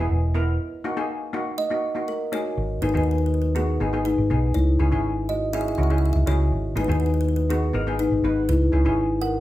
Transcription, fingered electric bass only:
0.11 0.57 E1 medium
2.57 2.80 G#1 loud
2.82 2.94 G#1 loud
2.95 3.77 D#2 loud
3.81 4.15 G#1 medium
4.18 4.29 G#1 medium
4.31 4.53 B1 medium
4.56 4.78 C#2 loud
4.80 4.91 C#2 loud
4.92 5.74 G#1 loud
5.78 6.12 C#2 medium
6.16 6.27 C#2 medium
6.27 6.50 C#2 medium
6.52 6.75 G#1 loud
6.76 6.88 G#1 loud
6.88 7.70 D#2 loud
7.74 8.09 G#1 medium
8.12 8.23 G#1 medium
8.24 8.47 G#1 medium
8.49 8.71 C#2 loud
8.73 8.84 C#2 loud
8.85 9.40 G#1 loud

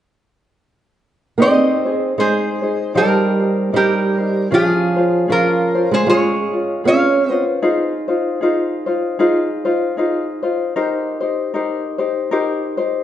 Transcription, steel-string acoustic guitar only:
1.38 2.12 C4 medium
2.18 2.91 G#3 medium
2.95 3.69 G3 medium
3.74 4.47 G3 medium
4.52 5.25 F3 medium
5.30 5.87 F3 medium
5.91 6.05 G#3 medium
6.07 6.81 G#3 medium
6.85 7.30 C#4 medium
7.30 7.43 B3 medium

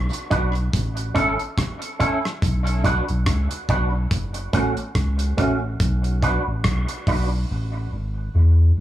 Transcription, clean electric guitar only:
0.30 0.49 D4 medium
0.30 0.49 F#4 medium
0.30 0.50 B4 medium
1.14 1.33 C#4 loud
1.14 1.33 E4 loud
1.14 1.34 A4 loud
1.38 muted clean electric guitar stroke medium
1.99 2.18 C#4 medium
1.99 2.18 E4 medium
1.99 2.18 A4 loud
2.84 3.02 D4 medium
2.84 3.03 F#4 medium
2.84 3.03 B4 medium
3.69 3.87 D4 medium
3.69 3.88 F#4 medium
3.69 3.88 B4 medium
4.53 4.71 A3 loud
4.53 4.72 C#4 loud
4.53 4.72 F#4 loud
4.78 muted clean electric guitar stroke soft
5.37 5.56 A3 medium
5.37 5.56 C#4 medium
5.37 5.56 F#4 medium
6.22 6.41 D4 medium
6.22 6.41 F#4 medium
6.22 6.41 B4 medium
7.08 7.25 D4 medium
7.08 7.26 F#4 medium
7.08 7.26 B4 medium

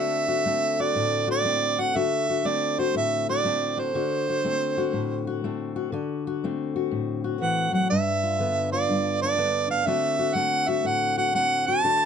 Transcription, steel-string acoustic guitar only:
0.00 1.95 D3 medium
0.00 0.45 A3 medium
0.00 0.46 C4 medium
0.00 0.28 F#4 medium
0.28 0.79 F#4 medium
0.45 1.44 A3 medium
0.45 1.45 C4 medium
0.80 1.27 F#4 medium
0.95 1.95 A2 medium
1.27 1.78 F#4 medium
1.44 2.45 A3 medium
1.44 1.98 C4 medium
1.79 1.96 F#4 medium
1.95 3.94 D3 medium
1.95 2.29 F#4 medium
2.30 2.79 F#4 medium
2.45 3.44 A3 medium
2.45 3.45 C4 medium
2.79 3.29 F#4 medium
2.95 3.94 A2 medium
3.29 3.77 F#4 medium
3.45 4.44 A3 medium
3.45 3.98 C4 medium
3.77 3.95 F#4 medium
3.95 5.91 D3 medium
3.95 4.29 F#4 medium
4.29 4.77 F#4 medium
4.44 5.43 A3 medium
4.44 5.43 C4 medium
4.77 5.26 F#4 medium
4.93 5.92 A2 medium
5.27 5.75 F#4 medium
5.44 5.91 A3 medium
5.44 5.91 C4 medium
5.76 5.90 F#4 medium
5.92 7.41 D3 medium
5.92 6.26 F#4 medium
6.27 6.75 F#4 medium
6.44 7.89 A3 medium
6.44 7.89 C4 medium
6.76 7.23 F#4 medium
6.91 7.90 A2 medium
7.24 7.88 F#4 medium
7.41 7.72 E3 medium
7.73 7.90 F#3 medium
7.91 8.88 G2 medium
7.91 9.23 D4 medium
8.24 8.72 F4 medium
8.39 9.36 D3 medium
8.39 9.37 B3 medium
8.73 9.86 F4 medium
8.89 9.86 G2 medium
9.23 9.69 D4 medium
9.38 9.85 D3 medium
9.38 9.85 B3 medium
9.70 9.87 D4 medium
9.87 11.84 D3 medium
9.87 10.35 A3 medium
9.87 10.36 C4 medium
9.87 10.19 F#4 medium
10.19 10.68 F#4 medium
10.35 11.34 A3 medium
10.35 11.36 C4 medium
10.68 11.17 F#4 medium
10.84 11.83 A2 medium
11.18 11.68 F#4 medium
11.35 12.05 A3 medium
11.35 11.87 C4 medium
11.68 11.84 F#4 medium
11.84 12.05 D3 medium
11.84 12.05 F#4 medium

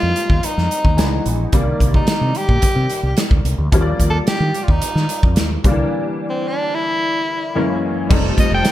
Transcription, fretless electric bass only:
0.03 0.12 F2 medium
0.30 0.39 D#2 medium
0.44 muted fretless electric bass stroke soft
0.58 0.67 F2 medium
0.85 1.00 D#2 medium
0.98 1.18 C#2 medium
1.26 1.45 A#1 medium
1.53 1.72 C2 medium
1.81 2.00 C2 medium
2.08 muted fretless electric bass stroke soft
2.21 2.31 C3 medium
2.49 2.58 A#2 medium
2.63 muted fretless electric bass stroke soft
2.76 2.86 C3 medium
3.03 3.13 C2 medium
3.31 3.41 D2 medium
3.45 3.54 C2 medium
3.58 3.68 D2 medium
3.73 3.92 D#2 medium
4.00 4.19 D#2 medium
4.27 muted fretless electric bass stroke soft
4.40 4.50 D#3 medium
4.68 4.78 D#2 medium
4.82 muted fretless electric bass stroke soft
4.95 5.05 D#3 medium
5.23 5.37 F2 medium
5.37 5.56 D#2 medium
5.65 5.84 C2 medium
8.11 8.30 F1 medium
8.52 8.61 F1 medium

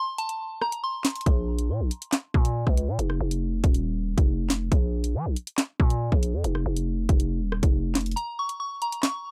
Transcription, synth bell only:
0.00 0.17 C6 medium
0.18 0.59 A5 medium
0.62 0.82 A#5 medium
0.84 1.24 C6 medium
8.16 8.37 A#5 medium
8.39 8.59 C#6 medium
8.60 8.80 C#6 medium
8.82 9.02 A#5 medium
9.03 9.31 C#6 medium

